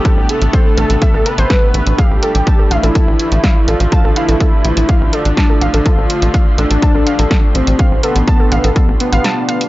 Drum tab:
HH |x-xxx-xxx-xxx-xx|x-xxx-xxx-xxx-xx|x-xxx-xxx-xxx-xx|x-xxx-xxx-xxx-xx|
SD |------------o---|------------o---|------------o---|------------o---|
BD |o---o---o---o---|o---o---o---o---|o---o---o---o---|o---o---o---o---|

HH |x-xxx-xxx-xxx-xx|
SD |------------o---|
BD |o---o---o-------|